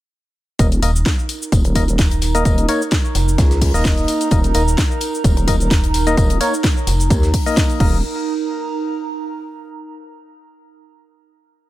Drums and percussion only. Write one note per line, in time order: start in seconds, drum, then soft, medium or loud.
0.59 kick loud
0.59 closed hi-hat medium
0.59 tambourine medium
0.59 shaker medium
0.72 closed hi-hat medium
0.72 shaker soft
0.82 open hi-hat loud
0.82 tambourine medium
0.96 shaker medium
1.06 kick loud
1.06 snare loud
1.06 closed hi-hat medium
1.06 tambourine loud
1.06 shaker medium
1.19 shaker soft
1.29 open hi-hat loud
1.29 tambourine medium
1.42 shaker medium
1.52 kick loud
1.52 closed hi-hat medium
1.52 tambourine medium
1.52 shaker medium
1.65 closed hi-hat soft
1.65 shaker soft
1.75 kick medium
1.75 open hi-hat loud
1.75 tambourine medium
1.88 closed hi-hat soft
1.88 shaker medium
1.98 kick loud
1.98 snare loud
1.98 closed hi-hat medium
1.98 tambourine medium
1.98 shaker medium
2.11 closed hi-hat soft
2.11 shaker soft
2.21 snare medium
2.21 open hi-hat loud
2.21 tambourine medium
2.35 closed hi-hat medium
2.35 shaker medium
2.45 kick loud
2.45 closed hi-hat medium
2.45 tambourine medium
2.45 shaker medium
2.58 closed hi-hat soft
2.58 closed hi-hat medium
2.58 shaker soft
2.69 open hi-hat loud
2.69 tambourine medium
2.82 shaker medium
2.91 kick loud
2.91 snare loud
2.91 closed hi-hat medium
2.91 tambourine medium
2.91 shaker medium
3.05 shaker soft
3.15 snare soft
3.15 open hi-hat loud
3.15 tambourine medium
3.28 shaker medium
3.38 kick loud
3.38 snare loud
3.38 closed hi-hat medium
3.38 tambourine medium
3.38 shaker medium
3.51 snare soft
3.51 closed hi-hat soft
3.51 shaker soft
3.61 kick medium
3.61 open hi-hat medium
3.61 open hi-hat loud
3.74 closed hi-hat soft
3.74 shaker medium
3.85 kick loud
3.85 snare loud
3.85 closed hi-hat medium
3.85 tambourine medium
3.85 shaker medium
3.97 closed hi-hat soft
3.97 shaker soft
4.08 open hi-hat loud
4.08 tambourine medium
4.21 closed hi-hat medium
4.21 shaker medium
4.31 kick loud
4.31 closed hi-hat medium
4.31 tambourine medium
4.31 shaker medium
4.44 closed hi-hat medium
4.44 shaker soft
4.54 open hi-hat loud
4.54 tambourine medium
4.68 shaker medium
4.78 kick loud
4.78 snare loud
4.78 closed hi-hat medium
4.78 tambourine medium
4.78 shaker medium
4.91 shaker soft
5.01 open hi-hat loud
5.01 tambourine medium
5.15 shaker medium
5.24 kick loud
5.24 closed hi-hat medium
5.24 tambourine medium
5.24 shaker medium
5.37 closed hi-hat soft
5.37 shaker soft
5.48 kick medium
5.48 open hi-hat loud
5.48 tambourine medium
5.60 closed hi-hat soft
5.60 shaker medium
5.71 kick loud
5.71 snare loud
5.71 closed hi-hat medium
5.71 tambourine medium
5.71 shaker medium
5.84 closed hi-hat soft
5.84 shaker soft
5.94 snare soft
5.94 open hi-hat loud
5.94 tambourine medium
6.07 closed hi-hat medium
6.07 shaker medium
6.17 kick loud
6.17 closed hi-hat medium
6.17 tambourine medium
6.17 shaker medium
6.30 closed hi-hat soft
6.30 closed hi-hat medium
6.30 shaker soft
6.41 open hi-hat loud
6.41 tambourine medium
6.54 shaker medium
6.64 kick loud
6.64 snare loud
6.64 closed hi-hat medium
6.64 tambourine medium
6.64 shaker medium
6.77 shaker soft
6.87 snare soft
6.87 open hi-hat loud
6.87 tambourine medium
7.00 closed hi-hat soft
7.00 shaker medium
7.10 kick loud
7.10 closed hi-hat medium
7.10 tambourine medium
7.10 shaker medium
7.23 snare soft
7.23 closed hi-hat soft
7.23 shaker soft
7.34 kick medium
7.34 open hi-hat medium
7.34 open hi-hat loud
7.46 closed hi-hat soft
7.46 shaker medium
7.57 kick loud
7.57 snare loud
7.57 closed hi-hat medium
7.57 tambourine medium
7.57 shaker medium
7.70 closed hi-hat soft
7.70 shaker soft
7.80 kick loud
7.80 crash medium